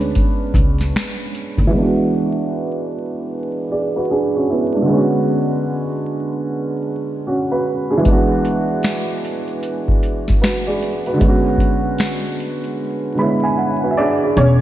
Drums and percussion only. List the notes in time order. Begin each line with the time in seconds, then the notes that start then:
0.01 closed hi-hat
0.15 kick, closed hi-hat
0.54 kick, closed hi-hat
0.78 snare, closed hi-hat
0.96 finger snap, snare, closed hi-hat
1.35 closed hi-hat
1.58 kick, closed hi-hat
8.05 kick, closed hi-hat
8.45 closed hi-hat
8.83 finger snap, snare, closed hi-hat
9.25 closed hi-hat
9.48 closed hi-hat
9.63 closed hi-hat
9.88 kick
10.03 closed hi-hat
10.28 kick, snare
10.44 finger snap, snare, closed hi-hat
10.82 closed hi-hat
11.06 closed hi-hat
11.21 kick, closed hi-hat
11.58 kick, closed hi-hat
11.98 finger snap, snare, closed hi-hat
12.40 closed hi-hat
12.64 closed hi-hat
14.37 closed hi-hat